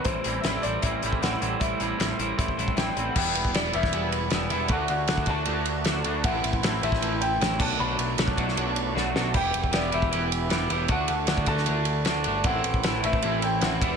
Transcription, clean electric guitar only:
X:1
M:4/4
L:1/8
Q:1/4=155
K:Em
V:1 name="Clean electric guitar"
[A,,E,G,CE] [A,,E,G,CE] [A,,E,G,CE] [A,,E,G,CE] [A,,E,G,CE] [A,,E,G,CE] [A,,E,G,CE] [A,,E,G,CE] | [A,,E,G,CE] [A,,E,G,CE] [A,,E,G,CE] [A,,E,G,CE] [A,,E,G,CE] [A,,E,G,CE] [A,,E,G,CE] [A,,E,G,CE] | [E,G,B,E]2 [E,G,B,E] [E,G,B,E] [E,G,B,E]2 [E,G,B,E] [E,G,B,E] | [D,A,DF]2 [D,A,DF] [D,A,DF] [D,A,DF]2 [D,A,DF] [D,A,DF] |
[A,,E,A,CE]2 [A,,E,A,CE] [A,,E,A,CE] [A,,E,A,CE]2 [A,,E,A,CE] [B,,F,A,DF] | [B,,F,A,DF]2 [B,,F,A,DF] [B,,F,A,DF] [B,,F,A,DF]2 [B,,F,A,DF] [B,,F,A,DF] | [E,B,EG]2 [E,B,EG] [E,B,EG] [E,B,EG]2 [E,B,EG] [E,B,EG] | [D,A,DF]2 [D,A,DF] [D,A,DF] [D,A,DF]2 [D,A,DF] [D,A,DF] |
[A,,E,A,CE]2 [A,,E,A,CE] [A,,E,A,CE] [A,,E,A,CE]2 [A,,E,A,CE] [E,G,B,E] |]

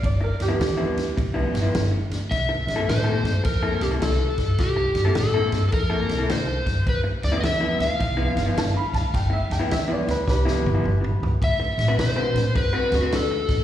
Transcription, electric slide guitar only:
X:1
M:4/4
L:1/16
Q:"Swing" 1/4=105
K:Gmix
V:1 name="Electric slide guitar"
d2 z12 z2 | e4 c4 _B2 G2 A4 | G4 A3- A/2 A/2 _B4 c4 | B2 d3/2 _e/2 =e2 f8- f2- |
f2 z12 z2 | e4 c4 B2 ^F2 A4 |]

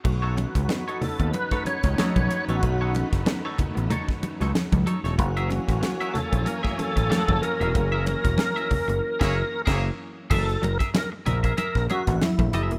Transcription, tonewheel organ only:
X:1
M:4/4
L:1/16
Q:"Swing 16ths" 1/4=94
K:F#mix
V:1 name="Tonewheel organ"
F6 =A2 B2 c4- c F- | F3 z12 z | F6 =A2 ^A2 =A4 ^A2- | A12 z4 |
=A2 ^A2 A2 A4 F2 E4 |]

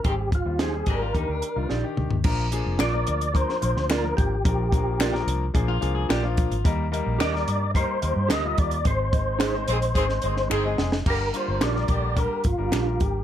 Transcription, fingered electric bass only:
X:1
M:4/4
L:1/16
Q:1/4=109
K:Bbmix
V:1 name="Fingered electric bass" clef=bass
A,,,3 E,,3 A,,,2 E,, D,, z C,, B,,, z D,, E,, | B,,,3 F,,, B,,,2 D,,3 z B,,, D,,3 A,,,2 | B,,,6 C,,2 B,,,2 C,,2 B,,,3 A,,, | E,,3 B,,, E,,2 G,,3 z E,, G,, D,,2 E,,2 |
A,,,6 B,,,2 A,,,2 G,,,2 G,,,2 F,,,2 | G,,,2 z G,,, B,,,2 B,,,3 z A,,, G,,, B,,,2 A,,,2 |]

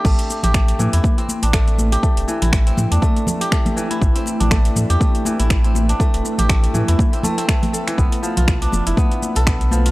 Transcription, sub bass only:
X:1
M:4/4
L:1/16
Q:"Swing 16ths" 1/4=121
K:Am
V:1 name="Sub bass" clef=bass
A,,, z2 A,,,2 z A,, E,, z3 A,,,4 z | z E,,, z A,,,2 z A,, E,, z8 | A,,, z2 A,,,2 z A,, E,, z3 A,,,4 z | z E,,, z A,,,2 z A,, E,, z8 |
B,,, z2 B,,,2 z F,,, F,,, z3 B,,,4 z |]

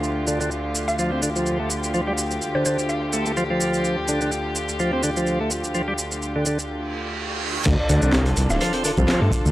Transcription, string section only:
X:1
M:4/4
L:1/8
Q:"Swing 16ths" 1/4=126
K:Dm
V:1 name="String section"
[D,,D,FG]8- | [D,,D,FG]8- | [D,,D,FG]8- | [D,,D,FG]8 |
[D,DFA]8 |]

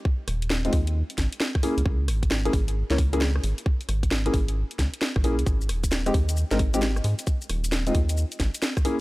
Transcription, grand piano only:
X:1
M:4/4
L:1/16
Q:"Swing 16ths" 1/4=133
K:Ab
V:1 name="Grand piano"
z4 z [A,CEF] z8 [B,D_FA] z | z4 z [B,D_FA] z3 [B,DFd] z [B,DFA] z4 | z4 z [B,D_FA] z8 [B,DFA] z | z4 z [A,CEG] z3 [A,CEB] z [A,CEG] z4 |
z4 z [A,CEF] z8 [B,D_FA] z |]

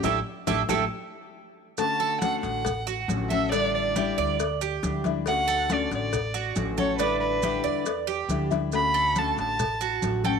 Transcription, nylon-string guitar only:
X:1
M:4/4
L:1/8
Q:1/4=138
K:D
V:1 name="Nylon-string guitar"
[A,DE] z [A,DE] [A,DE] z4 | [D,A,CF]2 [D,A,CF]2 z2 [D,A,CF] [A,CF] | [D,G,DE]2 [D,G,DE]2 z2 [D,G,DE] [G,DE] | [D,A,CF]2 [D,A,CF]2 z2 [D,A,CF] [A,CF] |
[D,G,DE]2 [D,G,DE]2 z2 [D,G,DE] [G,DE] | [D,A,CF]2 [D,A,CF]2 z2 [D,A,CF] [A,CF] |]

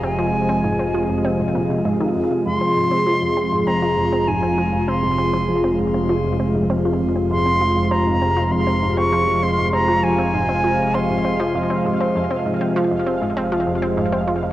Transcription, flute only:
X:1
M:4/4
L:1/16
Q:1/4=99
K:Fm
V:1 name="Flute"
a8 z8 | c'8 b4 a4 | c'6 z8 z2 | c'4 b4 c'3 d'3 c'2 |
b2 a6 c'6 z2 | z16 |]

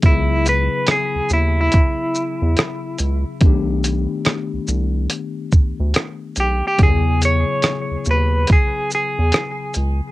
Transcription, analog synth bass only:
X:1
M:4/4
L:1/16
Q:"Swing 16ths" 1/4=71
K:E
V:1 name="Analog synth bass" clef=bass
C,,3 z2 D,, D,,2 z3 E,, z2 C,, z | B,,,3 z2 =C,, C,,2 z3 =D,, z2 B,,, z | E,,3 z2 D,, D,,2 z3 E,, z2 C,, z |]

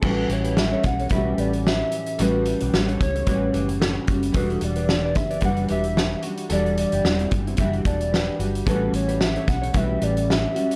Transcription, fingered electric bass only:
X:1
M:4/4
L:1/16
Q:"Swing 16ths" 1/4=111
K:Ador
V:1 name="Fingered electric bass" clef=bass
A,,,2 A,,,4 B,,,2 B,,,2 A,,,4 z2 | A,,,3 B,,, A,,,2 ^C,,2 A,,,2 F,,,4 F,,,2 | E,,,2 E,,,4 F,,,2 F,,,2 E,,,4 z2 | E,,,3 F,,, E,,,2 G,,,2 F,,,2 E,,,4 G,,,2 |
A,,,2 A,,,4 B,,,2 B,,,2 A,,,4 z2 |]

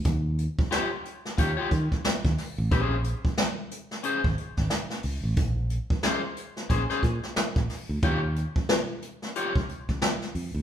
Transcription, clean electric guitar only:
X:1
M:4/4
L:1/16
Q:"Swing 16ths" 1/4=90
K:Bbdor
V:1 name="Clean electric guitar"
z4 [FGd] z3 [FGd] [FGd] z6 | [DAc] z6 z [DAc] z6 z | z4 [DAc] z3 [DAc] [DAc] z6 | [FGd] z6 z [FGd] z6 z |]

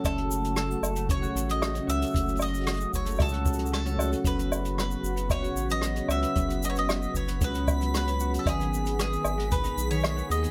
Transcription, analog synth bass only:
X:1
M:4/4
L:1/8
Q:1/4=114
K:F#dor
V:1 name="Analog synth bass" clef=bass
F,,,3 F,,,2 A,,,2 C,, | F,,,3 F,,, C,,3 C,, | F,,,3 F,,,2 A,,,2 C,, | F,,,3 F,,, C,,4 |
G,,,3 G,,,2 B,,,2 D,, |]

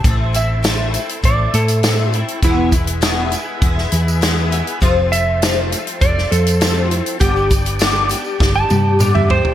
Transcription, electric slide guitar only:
X:1
M:4/4
L:1/16
Q:1/4=100
K:Am
V:1 name="Electric slide guitar"
z2 e6 d2 A4 E2 | E2 z12 z2 | z2 e6 d2 A4 E2 | G2 z6 z a4 e c2 |]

